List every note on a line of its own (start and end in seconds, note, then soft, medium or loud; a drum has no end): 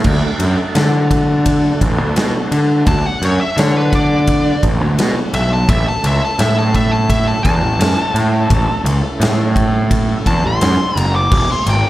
0.04 0.20 D2 loud
0.04 2.84 A3 medium
0.04 2.83 D4 medium
0.04 2.84 F#4 medium
0.04 2.84 A4 medium
0.04 kick loud
0.04 crash medium
0.40 0.55 F#2 medium
0.40 ride medium
0.75 1.68 D3 medium
0.75 snare loud
0.75 ride medium
1.11 kick medium
1.11 ride medium
1.46 kick medium
1.46 ride loud
1.81 1.98 A1 medium
1.81 kick medium
1.81 ride medium
1.98 2.14 D2 medium
2.16 2.32 B2 medium
2.16 snare loud
2.16 ride medium
2.52 2.83 D3 medium
2.52 ride medium
2.84 3.02 D2 loud
2.84 5.65 A3 medium
2.84 5.64 D4 medium
2.84 5.65 F#4 medium
2.84 3.06 A5 loud
2.84 kick loud
2.84 ride medium
3.06 3.22 F#5 loud
3.22 3.37 F#2 medium
3.22 3.40 C#5 medium
3.22 ride medium
3.41 3.60 E5 medium
3.57 4.50 D3 medium
3.57 3.77 C#5 loud
3.57 snare loud
3.57 ride medium
3.77 3.93 B4 medium
3.93 4.62 D5 loud
3.93 kick medium
3.93 ride medium
4.27 kick medium
4.27 ride medium
4.63 4.81 A1 medium
4.63 kick medium
4.63 ride medium
4.81 4.96 D2 medium
4.98 5.14 B2 loud
4.98 snare loud
4.98 ride loud
5.33 5.64 B1 medium
5.33 5.51 E5 loud
5.33 ride medium
5.53 5.69 A5 medium
5.68 5.84 A1 loud
5.68 8.47 A3 medium
5.68 8.47 C#4 medium
5.68 8.47 E4 medium
5.68 8.47 A4 medium
5.68 5.86 E5 medium
5.68 kick loud
5.68 ride medium
5.88 6.04 A5 medium
6.04 6.19 C#2 medium
6.04 6.22 E5 loud
6.04 ride medium
6.25 6.40 A5 medium
6.39 7.32 A2 medium
6.39 6.57 E5 loud
6.39 snare loud
6.39 ride loud
6.58 6.74 A5 medium
6.74 6.92 E5 loud
6.74 kick medium
6.74 ride medium
6.91 7.09 A5 medium
7.10 7.26 E5 loud
7.10 kick medium
7.10 ride loud
7.27 7.43 A5 medium
7.44 7.62 E2 medium
7.44 8.81 A5 loud
7.44 kick medium
7.44 ride medium
7.62 7.78 A1 medium
7.79 7.95 F#2 medium
7.79 snare loud
7.79 ride loud
8.14 8.45 A2 medium
8.14 ride medium
8.50 8.66 A1 loud
8.50 11.29 C#4 medium
8.50 11.29 E4 medium
8.50 11.29 A4 medium
8.50 kick loud
8.50 ride loud
8.84 9.00 C#2 medium
8.84 ride medium
9.20 10.13 A2 medium
9.20 snare loud
9.20 ride loud
9.56 kick medium
9.56 ride medium
9.91 kick medium
9.91 ride medium
10.26 10.44 E2 medium
10.26 10.44 A5 loud
10.26 kick medium
10.26 ride medium
10.44 10.59 A1 medium
10.44 11.00 C6 loud
10.61 10.77 F#2 loud
10.61 snare loud
10.61 ride loud
10.96 11.27 F#1 medium
10.96 11.13 A#5 loud
10.96 ride medium
11.16 11.49 D6 medium
11.31 11.47 E1 loud
11.31 11.90 G#3 medium
11.31 11.90 B3 medium
11.31 11.90 E4 medium
11.31 11.90 G#4 medium
11.31 kick loud
11.31 crash medium
11.52 11.67 C6 medium
11.66 11.82 G#1 medium
11.66 11.90 G5 medium
11.66 ride medium